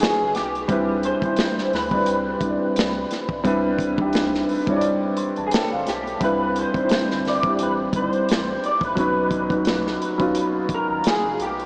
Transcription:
Already playing: grand piano F#3 B3 C#4 D#4 G#4 B4
0.00 clean electric guitar G#4, snare, closed hi-hat
0.21 analog synth bass F#1
0.35 analog synth bass B1, clean electric guitar G4, snare, closed hi-hat
0.55 closed hi-hat
0.68 analog synth bass C2, grand piano G3 C4 D4 E4 B4, kick, closed hi-hat
1.03 clean electric guitar C5, closed hi-hat
1.22 analog synth bass D2, grand piano G3 C4 D4 E4 C5, kick, closed hi-hat
1.36 snare, closed hi-hat
1.58 snare
1.73 analog synth bass D2, clean electric guitar B4, snare, open hi-hat
1.90 grand piano G3 C4 D4 E4 D5, kick
2.06 analog synth bass C2, closed hi-hat
2.40 analog synth bass B1, grand piano G3 C4 D4 E4 C5, kick, closed hi-hat
2.51 grand piano D5
2.76 analog synth bass C2, snare, closed hi-hat
3.11 snare, closed hi-hat
3.29 analog synth bass B1, kick
3.44 analog synth bass C2, grand piano G3 C4 D4 E4 B4, kick, closed hi-hat
3.79 kick, closed hi-hat
3.97 grand piano G3 C4 D4 D#4 G4, kick
4.07 grand piano E4
4.13 snare, closed hi-hat
4.34 snare
4.49 analog synth bass C2, open hi-hat
4.66 analog synth bass C2, grand piano G3 C4 D4 E4 C#5, kick, closed hi-hat
4.77 grand piano D5
4.81 closed hi-hat
5.17 analog synth bass A1, grand piano C6, closed hi-hat
5.36 analog synth bass A1, grand piano A5, closed hi-hat
5.47 clean electric guitar G#4
5.51 clean electric guitar A4, grand piano G5, snare, closed hi-hat
5.72 analog synth bass G1, grand piano F5
5.87 analog synth bass B1, clean electric guitar G4, snare, closed hi-hat
6.07 closed hi-hat
6.20 analog synth bass C2, grand piano G3 C4 D4 E4 B4, clean electric guitar B4, kick, closed hi-hat
6.56 clean electric guitar C5, closed hi-hat
6.74 analog synth bass G1, grand piano G3 C4 D4 D#4 C5, kick, closed hi-hat
6.83 grand piano E4
6.89 analog synth bass G1, snare, closed hi-hat
7.11 analog synth bass G1, snare
7.25 clean electric guitar D5, snare, open hi-hat
7.42 grand piano G3 C4 D4 E4 G4, kick, closed hi-hat
7.59 analog synth bass A1, closed hi-hat
7.63 clean electric guitar B4
7.92 analog synth bass G1, grand piano G3 C4 D4 D#4 D5, clean electric guitar B4, kick, closed hi-hat
8.02 grand piano E4
8.07 clean electric guitar C5
8.13 closed hi-hat
8.29 analog synth bass A1, snare, closed hi-hat
8.64 clean electric guitar D5, closed hi-hat
8.81 analog synth bass A#1, clean electric guitar B4, kick, closed hi-hat
8.95 analog synth bass B1, grand piano F#3 B3 C#4 D#4, kick, closed hi-hat
8.99 grand piano B4
9.31 kick, closed hi-hat
9.49 grand piano F#3 B3 C#4 D#4 F#4, kick, closed hi-hat
9.65 snare, closed hi-hat
9.87 snare
10.02 analog synth bass B1, closed hi-hat
10.18 analog synth bass B1, grand piano F#3 B3 C#4 D#4 F4, kick, closed hi-hat
10.35 closed hi-hat
10.69 analog synth bass G#1, kick, closed hi-hat
10.74 clean electric guitar A#4
10.90 analog synth bass G#1
11.04 clean electric guitar G#4, snare, closed hi-hat
11.24 analog synth bass F#1
11.39 analog synth bass B1, clean electric guitar G4, closed hi-hat
11.59 closed hi-hat

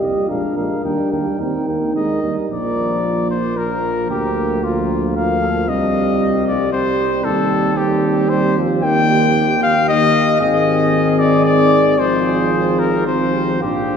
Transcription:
Already playing: french horn G4
0.02 tuba C2, euphonium G3, flugelhorn D#5, cornet D#5
0.29 tuba A#1, euphonium G#3, french horn D4, flugelhorn A#4, cornet F5
0.56 tuba A#1, euphonium G#3, flugelhorn A#4, cornet F5
0.83 tuba D#2, euphonium G3, french horn D4, flugelhorn A#4, cornet G5
1.11 tuba D#2, euphonium G3, flugelhorn A#4, cornet G5
1.39 tuba D#2, euphonium C4, french horn D#4, flugelhorn A#4, cornet G5
1.67 tuba D#2, euphonium A#3, flugelhorn A#4, cornet G5
1.94 tuba D#2, euphonium G#3, flugelhorn A#4, cornet D#5
2.22 tuba D#2, euphonium G3, flugelhorn A#4
2.49 tuba A#1, euphonium F3, french horn A#3, flugelhorn A#4, cornet D5
3.31 cornet C5
3.57 euphonium F3, french horn A#3, flugelhorn A#4, cornet A#4
4.09 tuba D2, euphonium F3, french horn A#3, cornet G4, flugelhorn A#4
4.62 euphonium F3, french horn A#3, cornet F4, flugelhorn A#4
5.16 euphonium F3, french horn A#3, flugelhorn A#4, cornet F5
5.42 flugelhorn A4
5.68 tuba C2, euphonium G3, french horn C4, flugelhorn G4, cornet D#5
6.47 cornet D5
6.73 euphonium G3, french horn C4, flugelhorn G4, cornet C5
7.24 tuba D#2, euphonium G3, french horn C4, flugelhorn G4, cornet A4
7.76 euphonium G3, french horn C4, cornet G4, flugelhorn G4
8.30 euphonium G3, french horn C4, flugelhorn G4, cornet C5
8.58 euphonium F3
8.83 euphonium D#3, french horn A#3, flugelhorn G4, cornet G5
9.63 cornet F5
9.88 euphonium D#3, french horn A#3, flugelhorn G4, cornet D#5
10.40 tuba G#1, euphonium D#3, french horn C4, flugelhorn G#4, cornet D#5
11.19 cornet D5
11.46 cornet D5
11.98 euphonium F3, french horn C4, flugelhorn G#4, cornet C5
12.79 cornet A#4
13.06 euphonium F3, french horn C4, flugelhorn G#4, cornet C5
13.33 flugelhorn G4
13.61 tuba A#1, euphonium F3, french horn D4, flugelhorn F4, cornet G4

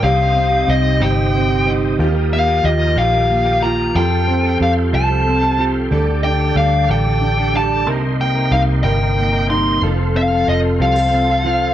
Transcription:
Already playing: steel-string acoustic guitar D4
0.02 fingered electric bass C2, clean electric guitar C3 G3 C4 D#4 G4, tonewheel organ C5 D#5 G5 D#6, lead electric guitar F5
0.18 clean electric guitar C4 D#4 G4
0.36 steel-string acoustic guitar C4
0.51 clean electric guitar C4 D#4 G4
0.67 fingered electric bass C2, clean electric guitar G3 C4 D#4 G4, lead electric guitar D#5
1.00 fingered electric bass G1, clean electric guitar C3 G3 C4 D#4 G4, lead electric guitar G5
1.16 clean electric guitar C4 D#4 G4
1.35 steel-string acoustic guitar C4
1.49 clean electric guitar C4 D#4 G4
1.65 clean electric guitar G3 C4 D#4 G4
1.98 fingered electric bass D#2, clean electric guitar D#3 F3 A#3 F4 G4, tonewheel organ A#4 F5
2.14 clean electric guitar A#3 F4 G4
2.33 steel-string acoustic guitar A#3, lead electric guitar F5
2.47 clean electric guitar A#3 F4 G4
2.63 fingered electric bass D#2, clean electric guitar F3 A#3 F4 G4, lead electric guitar D#5
2.96 fingered electric bass A#1, clean electric guitar D#3 F3 A#3 F4 G4, lead electric guitar F5
3.13 clean electric guitar A#3 F4 G4
3.31 steel-string acoustic guitar A#3
3.45 clean electric guitar A#3 F4 G4
3.62 clean electric guitar F3 A#3 F4 G4, lead electric guitar A#5
3.94 fingered electric bass F2, clean electric guitar F3 C4 G4 A4, tonewheel organ A4 C6, lead electric guitar G5
4.11 clean electric guitar C4 G4 A4
4.28 steel-string acoustic guitar C4
4.43 clean electric guitar C4 G4 A4
4.60 fingered electric bass F2, clean electric guitar F3 C4 G4 A4, lead electric guitar F5
4.93 fingered electric bass C2, clean electric guitar F3 C4 G4 A4, lead electric guitar A5
5.09 clean electric guitar C4 G4 A4
5.26 steel-string acoustic guitar C4
5.41 clean electric guitar C4 G4 A4
5.58 clean electric guitar F3 C4 G4 A4
5.91 fingered electric bass D2, clean electric guitar D3 G3 D4 G4 A4, tonewheel organ A4 D5 D6
6.07 clean electric guitar D4 G4 A4
6.24 steel-string acoustic guitar D4, lead electric guitar G5
6.40 clean electric guitar D4 G4 A4
6.56 fingered electric bass D2, clean electric guitar G3 D4 G4 A4, lead electric guitar F5
6.89 fingered electric bass A1, clean electric guitar D3 G3 D4 G4 A4, lead electric guitar G5
7.05 clean electric guitar D4 G4 A4
7.21 steel-string acoustic guitar D4
7.37 clean electric guitar D4 G4 A4
7.54 clean electric guitar G3 D4 G4 A4, lead electric guitar A5
7.86 fingered electric bass C2, clean electric guitar C3 G3 A#3 D#4 A#4, tonewheel organ A#4 D#5 C6
8.03 clean electric guitar A#3 D#4 A#4
8.20 steel-string acoustic guitar A#3, lead electric guitar G5
8.35 clean electric guitar A#3 D#4 A#4
8.51 fingered electric bass C2, clean electric guitar G3 A#3 D#4 A#4, lead electric guitar F5
8.84 fingered electric bass G1, clean electric guitar C3 G3 A#3 D#4 A#4, lead electric guitar G5
9.00 clean electric guitar A#3 D#4 A#4
9.18 steel-string acoustic guitar A#3
9.33 clean electric guitar A#3 D#4 A#4
9.49 clean electric guitar G3 A#3 D#4 A#4, lead electric guitar C6
9.82 fingered electric bass F1, clean electric guitar F3 C4 F4 A4, tonewheel organ A4 C5 F5
9.98 clean electric guitar C4 F4 A4
10.15 steel-string acoustic guitar C4, lead electric guitar F5
10.30 clean electric guitar C4 F4 A4
10.47 fingered electric bass F1, clean electric guitar F3 C4 F4 A4, lead electric guitar D#5
10.80 fingered electric bass C2, clean electric guitar F3 C4 F4 A4, steel-string acoustic guitar G4, lead electric guitar F5
10.96 clean electric guitar C4 F4 A4
11.12 steel-string acoustic guitar C4
11.29 clean electric guitar C4 F4 A4
11.45 clean electric guitar F3 C4 F4 A4

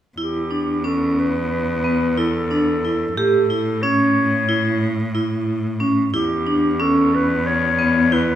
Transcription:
0.18 cello E2, vibraphone E4, clarinet G4
0.51 vibraphone D4
0.84 vibraphone C#4, clarinet A4
1.18 clarinet B4
1.84 vibraphone B3
2.17 vibraphone E4, clarinet A4
2.51 vibraphone D4
2.85 vibraphone E4
3.16 cello A2, vibraphone G4, clarinet A4
3.50 vibraphone E4
3.82 vibraphone C#4, clarinet C#5
4.49 vibraphone E4
5.15 vibraphone E4
5.80 vibraphone C#4
6.13 cello E2, vibraphone E4, clarinet G4
6.47 vibraphone D4
6.80 vibraphone C#4, clarinet A4
7.14 clarinet B4
7.47 clarinet C#5
7.79 vibraphone B3
8.12 vibraphone E4, clarinet B4

